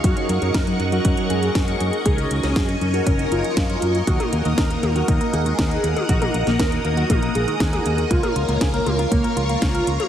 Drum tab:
HH |xxxxxxxxxxxxxxxx|xxxxxxxxxxxxxxxx|xxxxxxxxxxxxxxxx|xxxxxxxxxxxxxxxx|
SD |----o-------o---|---oo-------o---|----o-------o---|---oo-------o---|
T1 |----------------|----------------|-o----o--------o|-o------o----o--|
BD |o---o---o---o---|o---o---o---o---|o---o---o---o---|o---o---o---o---|

HH |xxxxxxxxxxxxxxxx|
SD |----o-------o---|
T1 |-o----o--------o|
BD |o---o---o---o---|